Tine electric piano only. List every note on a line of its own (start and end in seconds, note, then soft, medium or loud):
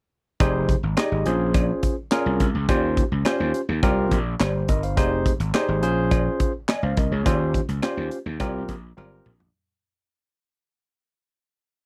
0.40 0.74 D#4 medium
0.40 0.75 G4 medium
0.40 0.75 G#4 medium
0.40 0.75 C5 medium
0.97 1.26 D#4 medium
0.97 1.26 G4 medium
0.97 1.25 G#4 medium
0.97 1.26 D#5 medium
1.26 1.94 C#4 medium
1.26 1.95 F4 medium
1.26 1.95 G#4 medium
1.26 1.95 C5 medium
2.11 2.46 C#4 loud
2.11 2.46 F4 medium
2.11 2.46 G#4 medium
2.11 2.46 A#4 loud
2.68 3.03 C#4 medium
2.68 3.03 F4 medium
2.68 3.03 G4 medium
2.68 3.03 C5 medium
3.25 3.60 C#4 medium
3.25 3.60 F4 medium
3.25 3.60 G4 medium
3.25 3.60 C5 loud
3.83 4.17 C4 medium
3.83 4.17 F4 medium
3.83 4.17 G4 medium
3.83 4.18 A#4 loud
4.40 4.68 G4 medium
4.40 4.67 C5 medium
4.69 4.83 A#4 medium
4.69 4.82 D#5 medium
4.83 4.96 C5 soft
4.83 5.10 F5 medium
4.97 5.31 D#4 medium
4.97 5.32 G4 medium
4.97 5.32 G#4 medium
4.97 5.32 C5 medium
5.54 5.83 D#4 medium
5.54 5.83 G4 medium
5.54 5.82 G#4 medium
5.54 5.82 C5 medium
5.82 6.51 C#4 medium
5.82 6.51 F4 medium
5.82 6.52 G#4 medium
5.82 6.52 C5 medium
6.69 6.83 D#5 medium
6.69 6.82 G#5 medium
6.83 6.97 C5 medium
6.83 6.97 F5 medium
6.97 7.11 A#4 medium
6.97 7.11 D#5 medium
7.12 7.39 G#4 medium
7.12 7.39 C#5 medium
7.25 7.60 C#4 medium
7.25 7.60 F4 medium
7.25 7.60 G4 medium
7.25 7.60 C5 medium
7.83 8.17 C#4 medium
7.83 8.17 F4 medium
7.83 8.18 G4 medium
7.83 8.18 C5 medium
8.40 8.74 C4 medium
8.40 8.74 F4 medium
8.40 8.75 G4 medium
8.40 8.75 A#4 loud
8.97 9.31 C4 medium
8.97 9.32 F4 medium
8.97 9.32 G4 medium
8.97 9.32 A#4 loud